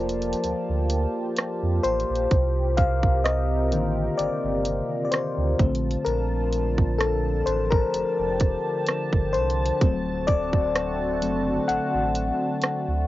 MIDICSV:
0, 0, Header, 1, 5, 480
1, 0, Start_track
1, 0, Tempo, 937500
1, 1184, Time_signature, 4, 2, 24, 8
1, 6694, End_track
2, 0, Start_track
2, 0, Title_t, "FM electric piano"
2, 0, Program_c, 0, 5
2, 0, Control_c, 0, 64, 127
2, 0, Note_on_c, 0, 53, 55
2, 0, Note_on_c, 0, 58, 63
2, 0, Note_on_c, 0, 69, 50
2, 0, Note_on_c, 0, 70, 77
2, 0, Note_on_c, 0, 72, 89
2, 0, Note_on_c, 0, 74, 98
2, 330, Note_off_c, 0, 70, 0
2, 939, Note_off_c, 0, 72, 0
2, 939, Note_on_c, 0, 72, 91
2, 1163, Note_off_c, 0, 53, 0
2, 1163, Note_off_c, 0, 69, 0
2, 1165, Note_off_c, 0, 58, 0
2, 1190, Control_c, 0, 64, 0
2, 1192, Note_off_c, 0, 74, 0
2, 1289, Control_c, 0, 64, 127
2, 1419, Note_on_c, 0, 77, 91
2, 1436, Note_off_c, 0, 72, 0
2, 1491, Note_off_c, 0, 77, 0
2, 1660, Note_on_c, 0, 75, 86
2, 1904, Note_on_c, 0, 51, 55
2, 1906, Note_on_c, 0, 58, 52
2, 1909, Note_on_c, 0, 50, 61
2, 2138, Note_on_c, 0, 74, 85
2, 2157, Note_off_c, 0, 75, 0
2, 2231, Note_off_c, 0, 51, 0
2, 2232, Note_off_c, 0, 58, 0
2, 2233, Note_off_c, 0, 50, 0
2, 2578, Note_off_c, 0, 74, 0
2, 2584, Note_on_c, 0, 74, 68
2, 2618, Note_on_c, 0, 72, 84
2, 2621, Note_off_c, 0, 74, 0
2, 2860, Note_on_c, 0, 50, 56
2, 2864, Note_on_c, 0, 57, 52
2, 2866, Note_on_c, 0, 60, 60
2, 2871, Control_c, 0, 64, 0
2, 2960, Control_c, 0, 64, 127
2, 3096, Note_on_c, 0, 70, 86
2, 3116, Note_off_c, 0, 72, 0
2, 3188, Note_off_c, 0, 50, 0
2, 3190, Note_off_c, 0, 57, 0
2, 3192, Note_off_c, 0, 60, 0
2, 3576, Note_on_c, 0, 69, 87
2, 3594, Note_off_c, 0, 70, 0
2, 3818, Note_on_c, 0, 72, 90
2, 3827, Note_off_c, 0, 69, 0
2, 3942, Note_off_c, 0, 72, 0
2, 3945, Note_on_c, 0, 70, 89
2, 4776, Note_on_c, 0, 72, 92
2, 4805, Note_off_c, 0, 70, 0
2, 5025, Note_on_c, 0, 54, 56
2, 5028, Note_on_c, 0, 57, 50
2, 5030, Note_on_c, 0, 60, 60
2, 5031, Control_c, 0, 64, 0
2, 5113, Control_c, 0, 64, 127
2, 5259, Note_on_c, 0, 74, 104
2, 5275, Note_off_c, 0, 72, 0
2, 5738, Note_off_c, 0, 54, 0
2, 5741, Note_off_c, 0, 57, 0
2, 5743, Note_off_c, 0, 60, 0
2, 5744, Note_on_c, 0, 54, 50
2, 5747, Note_on_c, 0, 57, 44
2, 5749, Note_on_c, 0, 60, 53
2, 5964, Note_off_c, 0, 54, 0
2, 5965, Note_off_c, 0, 57, 0
2, 5966, Note_off_c, 0, 60, 0
2, 5979, Note_on_c, 0, 78, 98
2, 6003, Note_off_c, 0, 74, 0
2, 6694, Note_off_c, 0, 78, 0
2, 6694, End_track
3, 0, Start_track
3, 0, Title_t, "Analog synth pad"
3, 0, Program_c, 1, 89
3, 0, Note_on_c, 1, 53, 81
3, 0, Note_on_c, 1, 58, 70
3, 0, Note_on_c, 1, 65, 72
3, 0, Note_on_c, 1, 67, 71
3, 0, Note_on_c, 1, 81, 89
3, 1163, Note_off_c, 1, 53, 0
3, 1163, Note_off_c, 1, 58, 0
3, 1164, Note_off_c, 1, 81, 0
3, 1185, Note_on_c, 1, 60, 66
3, 1185, Note_on_c, 1, 70, 80
3, 1186, Note_on_c, 1, 48, 72
3, 2843, Note_off_c, 1, 65, 0
3, 2843, Note_off_c, 1, 67, 0
3, 2848, Note_off_c, 1, 48, 0
3, 2848, Note_off_c, 1, 60, 0
3, 2848, Note_off_c, 1, 70, 0
3, 2865, Note_on_c, 1, 65, 68
3, 2866, Note_on_c, 1, 50, 77
3, 2866, Note_on_c, 1, 53, 70
3, 2866, Note_on_c, 1, 62, 70
3, 2867, Note_on_c, 1, 81, 86
3, 3815, Note_off_c, 1, 65, 0
3, 3826, Note_on_c, 1, 67, 66
3, 5005, Note_off_c, 1, 53, 0
3, 5005, Note_off_c, 1, 62, 0
3, 5013, Note_off_c, 1, 67, 0
3, 5025, Note_on_c, 1, 60, 65
3, 5026, Note_on_c, 1, 57, 68
3, 5026, Note_on_c, 1, 66, 68
3, 6688, Note_off_c, 1, 57, 0
3, 6688, Note_off_c, 1, 60, 0
3, 6688, Note_off_c, 1, 66, 0
3, 6694, Note_off_c, 1, 50, 0
3, 6694, Note_off_c, 1, 81, 0
3, 6694, End_track
4, 0, Start_track
4, 0, Title_t, "Sub bass"
4, 0, Program_c, 2, 38
4, 0, Note_on_c, 2, 29, 88
4, 175, Note_off_c, 2, 29, 0
4, 225, Note_on_c, 2, 38, 49
4, 277, Note_off_c, 2, 38, 0
4, 355, Note_on_c, 2, 38, 79
4, 544, Note_off_c, 2, 38, 0
4, 833, Note_on_c, 2, 41, 87
4, 921, Note_off_c, 2, 41, 0
4, 944, Note_on_c, 2, 33, 92
4, 1047, Note_off_c, 2, 33, 0
4, 1074, Note_on_c, 2, 34, 86
4, 1161, Note_off_c, 2, 34, 0
4, 1184, Note_on_c, 2, 36, 115
4, 1904, Note_on_c, 2, 33, 97
4, 1912, Note_off_c, 2, 36, 0
4, 2094, Note_off_c, 2, 33, 0
4, 2145, Note_on_c, 2, 31, 49
4, 2196, Note_off_c, 2, 31, 0
4, 2274, Note_on_c, 2, 31, 85
4, 2464, Note_off_c, 2, 31, 0
4, 2753, Note_on_c, 2, 38, 92
4, 2841, Note_off_c, 2, 38, 0
4, 2865, Note_on_c, 2, 34, 104
4, 3054, Note_off_c, 2, 34, 0
4, 3104, Note_on_c, 2, 34, 109
4, 3804, Note_off_c, 2, 34, 0
4, 3824, Note_on_c, 2, 33, 106
4, 4014, Note_off_c, 2, 33, 0
4, 4064, Note_on_c, 2, 29, 48
4, 4116, Note_off_c, 2, 29, 0
4, 4194, Note_on_c, 2, 29, 91
4, 4384, Note_off_c, 2, 29, 0
4, 4673, Note_on_c, 2, 31, 99
4, 4785, Note_on_c, 2, 36, 91
4, 4792, Note_off_c, 2, 31, 0
4, 4975, Note_off_c, 2, 36, 0
4, 5025, Note_on_c, 2, 26, 106
4, 5746, Note_on_c, 2, 30, 82
4, 5753, Note_off_c, 2, 26, 0
4, 5935, Note_off_c, 2, 30, 0
4, 5985, Note_on_c, 2, 33, 47
4, 6037, Note_off_c, 2, 33, 0
4, 6115, Note_on_c, 2, 33, 85
4, 6305, Note_off_c, 2, 33, 0
4, 6594, Note_on_c, 2, 38, 83
4, 6682, Note_off_c, 2, 38, 0
4, 6694, End_track
5, 0, Start_track
5, 0, Title_t, "Drums"
5, 47, Note_on_c, 9, 42, 63
5, 99, Note_off_c, 9, 42, 0
5, 112, Note_on_c, 9, 42, 61
5, 164, Note_off_c, 9, 42, 0
5, 168, Note_on_c, 9, 42, 64
5, 219, Note_off_c, 9, 42, 0
5, 224, Note_on_c, 9, 42, 74
5, 275, Note_off_c, 9, 42, 0
5, 459, Note_on_c, 9, 42, 77
5, 511, Note_off_c, 9, 42, 0
5, 699, Note_on_c, 9, 42, 69
5, 709, Note_on_c, 9, 37, 98
5, 750, Note_off_c, 9, 42, 0
5, 760, Note_off_c, 9, 37, 0
5, 943, Note_on_c, 9, 42, 50
5, 994, Note_off_c, 9, 42, 0
5, 1023, Note_on_c, 9, 42, 47
5, 1074, Note_off_c, 9, 42, 0
5, 1103, Note_on_c, 9, 42, 48
5, 1154, Note_off_c, 9, 42, 0
5, 1183, Note_on_c, 9, 42, 64
5, 1184, Note_on_c, 9, 36, 109
5, 1234, Note_off_c, 9, 42, 0
5, 1235, Note_off_c, 9, 36, 0
5, 1420, Note_on_c, 9, 42, 59
5, 1423, Note_on_c, 9, 36, 87
5, 1472, Note_off_c, 9, 42, 0
5, 1474, Note_off_c, 9, 36, 0
5, 1552, Note_on_c, 9, 36, 85
5, 1603, Note_off_c, 9, 36, 0
5, 1667, Note_on_c, 9, 37, 106
5, 1667, Note_on_c, 9, 42, 58
5, 1718, Note_off_c, 9, 37, 0
5, 1718, Note_off_c, 9, 42, 0
5, 1905, Note_on_c, 9, 42, 70
5, 1956, Note_off_c, 9, 42, 0
5, 2145, Note_on_c, 9, 42, 74
5, 2197, Note_off_c, 9, 42, 0
5, 2381, Note_on_c, 9, 42, 77
5, 2433, Note_off_c, 9, 42, 0
5, 2620, Note_on_c, 9, 42, 67
5, 2630, Note_on_c, 9, 37, 104
5, 2672, Note_off_c, 9, 42, 0
5, 2682, Note_off_c, 9, 37, 0
5, 2864, Note_on_c, 9, 36, 100
5, 2865, Note_on_c, 9, 42, 47
5, 2915, Note_off_c, 9, 36, 0
5, 2916, Note_off_c, 9, 42, 0
5, 2944, Note_on_c, 9, 42, 47
5, 2995, Note_off_c, 9, 42, 0
5, 3025, Note_on_c, 9, 42, 49
5, 3076, Note_off_c, 9, 42, 0
5, 3104, Note_on_c, 9, 42, 64
5, 3156, Note_off_c, 9, 42, 0
5, 3341, Note_on_c, 9, 42, 60
5, 3393, Note_off_c, 9, 42, 0
5, 3471, Note_on_c, 9, 36, 81
5, 3523, Note_off_c, 9, 36, 0
5, 3586, Note_on_c, 9, 42, 59
5, 3587, Note_on_c, 9, 37, 100
5, 3638, Note_off_c, 9, 37, 0
5, 3638, Note_off_c, 9, 42, 0
5, 3824, Note_on_c, 9, 42, 77
5, 3876, Note_off_c, 9, 42, 0
5, 3952, Note_on_c, 9, 36, 91
5, 4003, Note_off_c, 9, 36, 0
5, 4065, Note_on_c, 9, 42, 75
5, 4116, Note_off_c, 9, 42, 0
5, 4300, Note_on_c, 9, 42, 75
5, 4304, Note_on_c, 9, 36, 90
5, 4351, Note_off_c, 9, 42, 0
5, 4355, Note_off_c, 9, 36, 0
5, 4539, Note_on_c, 9, 42, 73
5, 4549, Note_on_c, 9, 37, 100
5, 4590, Note_off_c, 9, 42, 0
5, 4600, Note_off_c, 9, 37, 0
5, 4673, Note_on_c, 9, 36, 79
5, 4724, Note_off_c, 9, 36, 0
5, 4783, Note_on_c, 9, 42, 46
5, 4835, Note_off_c, 9, 42, 0
5, 4864, Note_on_c, 9, 42, 49
5, 4915, Note_off_c, 9, 42, 0
5, 4944, Note_on_c, 9, 42, 51
5, 4995, Note_off_c, 9, 42, 0
5, 5024, Note_on_c, 9, 36, 117
5, 5024, Note_on_c, 9, 42, 61
5, 5075, Note_off_c, 9, 42, 0
5, 5076, Note_off_c, 9, 36, 0
5, 5262, Note_on_c, 9, 42, 55
5, 5264, Note_on_c, 9, 36, 82
5, 5313, Note_off_c, 9, 42, 0
5, 5315, Note_off_c, 9, 36, 0
5, 5392, Note_on_c, 9, 36, 85
5, 5443, Note_off_c, 9, 36, 0
5, 5507, Note_on_c, 9, 37, 103
5, 5507, Note_on_c, 9, 42, 60
5, 5558, Note_off_c, 9, 37, 0
5, 5558, Note_off_c, 9, 42, 0
5, 5745, Note_on_c, 9, 42, 70
5, 5796, Note_off_c, 9, 42, 0
5, 5985, Note_on_c, 9, 42, 71
5, 6036, Note_off_c, 9, 42, 0
5, 6221, Note_on_c, 9, 42, 79
5, 6272, Note_off_c, 9, 42, 0
5, 6460, Note_on_c, 9, 42, 69
5, 6470, Note_on_c, 9, 37, 105
5, 6511, Note_off_c, 9, 42, 0
5, 6521, Note_off_c, 9, 37, 0
5, 6694, End_track
0, 0, End_of_file